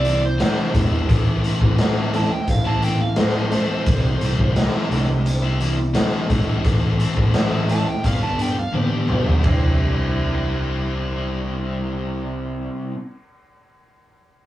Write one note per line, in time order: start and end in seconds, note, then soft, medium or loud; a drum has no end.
0.00 0.40 C2 loud
0.00 0.74 G3 medium
0.00 0.39 D4 medium
0.00 0.23 D5 medium
0.04 0.22 E3 medium
0.04 0.21 G3 medium
0.04 0.22 C4 medium
0.04 0.22 E4 medium
0.04 closed hi-hat medium
0.22 0.41 C5 medium
0.22 muted distorted electric guitar stroke soft
0.38 1.06 C3 medium
0.38 0.72 E3 medium
0.38 0.73 G3 medium
0.38 0.75 C4 medium
0.38 1.09 D4 medium
0.38 0.76 E4 medium
0.38 snare loud
0.38 closed hi-hat medium
0.42 0.75 C5 medium
0.73 1.01 E2 medium
0.73 1.08 E3 medium
0.73 0.92 G3 medium
0.73 0.91 C4 medium
0.73 0.89 E4 medium
0.73 kick medium
0.73 closed hi-hat medium
0.90 1.08 G3 medium
0.90 1.10 C4 medium
0.90 1.11 E4 medium
1.08 1.48 A1 loud
1.08 1.76 A2 medium
1.08 1.42 E3 medium
1.08 1.43 A3 medium
1.08 1.44 C4 loud
1.08 1.46 E4 medium
1.08 kick loud
1.08 closed hi-hat medium
1.42 1.78 E3 medium
1.42 1.78 A3 medium
1.42 1.79 C4 medium
1.42 1.80 E4 medium
1.42 closed hi-hat medium
1.61 2.27 A1 medium
1.61 kick medium
1.77 2.47 A2 medium
1.77 2.11 E3 medium
1.77 2.12 A3 medium
1.77 2.14 C4 medium
1.77 2.15 E4 medium
1.77 snare loud
1.77 closed hi-hat medium
2.12 2.31 E3 medium
2.12 2.30 A3 medium
2.12 2.31 C4 medium
2.12 2.30 E4 medium
2.12 2.31 A5 loud
2.12 closed hi-hat medium
2.31 2.48 G5 medium
2.31 muted distorted electric guitar stroke soft
2.47 3.53 A1 medium
2.47 3.50 A3 medium
2.47 2.66 F5 medium
2.47 kick medium
2.47 closed hi-hat medium
2.64 2.81 A3 soft
2.64 2.83 C4 medium
2.64 2.84 E4 medium
2.64 2.83 A5 medium
2.81 3.00 E3 medium
2.81 2.99 A3 medium
2.81 3.00 C4 medium
2.81 2.99 E4 medium
2.81 3.01 G5 medium
2.81 closed hi-hat medium
3.00 3.17 F5 medium
3.00 muted distorted electric guitar stroke soft
3.16 3.84 A2 medium
3.16 3.50 E3 medium
3.16 3.51 A3 medium
3.16 3.53 C4 medium
3.16 3.54 E4 loud
3.16 4.53 C5 medium
3.16 snare loud
3.16 closed hi-hat medium
3.51 3.86 E3 medium
3.51 3.70 A3 medium
3.51 3.69 C4 medium
3.51 3.68 E4 medium
3.51 closed hi-hat medium
3.68 3.85 A3 medium
3.68 3.87 C4 medium
3.68 3.88 E4 medium
3.85 4.13 C2 medium
3.85 4.54 C3 medium
3.85 4.19 E3 medium
3.85 4.20 G3 loud
3.85 4.21 C4 loud
3.85 4.22 E4 medium
3.85 kick loud
3.85 closed hi-hat medium
4.20 4.34 C2 medium
4.20 4.55 E3 medium
4.20 4.56 G3 medium
4.20 4.57 C4 medium
4.20 4.57 E4 medium
4.20 closed hi-hat medium
4.39 4.65 C2 medium
4.39 kick medium
4.55 5.25 C3 medium
4.55 4.88 E3 medium
4.55 4.90 G3 medium
4.55 4.91 C4 medium
4.55 4.92 E4 medium
4.55 snare loud
4.55 closed hi-hat medium
4.75 snare soft
4.89 5.96 C2 medium
4.89 5.07 E3 medium
4.89 5.08 G3 medium
4.89 5.07 C4 medium
4.89 5.94 D4 medium
4.89 5.07 E4 medium
4.89 closed hi-hat medium
5.08 muted distorted electric guitar stroke soft
5.25 6.28 G3 medium
5.25 closed hi-hat medium
5.42 5.59 G3 soft
5.42 5.60 C4 medium
5.42 5.61 E4 medium
5.59 5.76 E3 medium
5.59 5.76 G3 medium
5.59 5.76 C4 medium
5.59 5.76 E4 medium
5.59 closed hi-hat medium
5.77 muted distorted electric guitar stroke medium
5.93 6.62 C3 medium
5.93 6.27 E3 medium
5.93 6.28 G3 medium
5.93 6.29 C4 medium
5.93 6.65 D4 medium
5.93 6.31 E4 medium
5.93 snare loud
5.93 closed hi-hat medium
6.28 6.56 A1 medium
6.28 6.62 E3 medium
6.28 6.48 G3 medium
6.28 6.47 C4 medium
6.28 6.45 E4 medium
6.28 kick medium
6.28 closed hi-hat medium
6.46 6.64 G3 medium
6.46 6.63 C4 medium
6.46 6.62 E4 medium
6.63 7.04 A1 medium
6.63 7.32 A2 medium
6.63 6.97 E3 medium
6.63 6.98 A3 medium
6.63 6.99 C4 medium
6.63 7.00 E4 medium
6.63 kick loud
6.63 closed hi-hat medium
6.98 7.33 E3 medium
6.98 7.34 A3 medium
6.98 7.35 C4 medium
6.98 7.35 E4 medium
6.98 closed hi-hat medium
7.16 7.83 A1 medium
7.16 kick medium
7.33 8.02 A2 medium
7.33 7.67 E3 medium
7.33 7.68 A3 medium
7.33 7.69 C4 medium
7.33 7.71 E4 medium
7.33 snare loud
7.33 closed hi-hat medium
7.68 7.86 E3 medium
7.68 7.86 A3 medium
7.68 7.86 C4 medium
7.68 7.85 E4 medium
7.68 7.87 A5 medium
7.68 closed hi-hat medium
7.86 8.05 G5 medium
7.86 muted distorted electric guitar stroke soft
8.03 8.57 G1 medium
8.03 8.57 G2 medium
8.03 8.36 D3 medium
8.03 8.23 G3 medium
8.03 8.21 B3 medium
8.03 8.19 D4 medium
8.03 8.22 F5 medium
8.03 kick medium
8.03 closed hi-hat medium
8.20 8.38 G3 medium
8.20 8.39 B3 medium
8.20 8.40 D4 medium
8.20 8.42 A5 medium
8.38 8.56 D3 medium
8.38 8.56 G3 medium
8.38 8.56 B3 medium
8.38 8.56 D4 medium
8.38 closed hi-hat medium
8.42 8.59 G5 medium
8.57 8.75 F5 medium
8.57 muted distorted electric guitar stroke soft
8.72 9.06 A1 medium
8.72 9.41 G2 medium
8.72 9.06 D3 medium
8.72 9.08 G3 medium
8.72 9.09 B3 medium
8.72 9.10 D4 medium
8.72 9.43 G4 medium
8.72 high tom medium
9.08 9.41 B1 medium
9.08 9.42 D3 medium
9.08 9.27 G3 medium
9.08 9.26 B3 medium
9.08 9.24 D4 medium
9.08 mid tom medium
9.25 9.43 G3 medium
9.25 9.43 B3 medium
9.25 9.42 D4 medium
9.25 floor tom medium
9.43 12.65 C2 medium
9.43 12.93 C3 medium
9.43 12.93 E3 medium
9.43 12.94 G3 medium
9.43 12.95 C4 medium
9.43 12.95 D4 medium
9.43 kick medium
9.43 floor tom medium
9.43 ride bell medium
9.47 12.97 E4 medium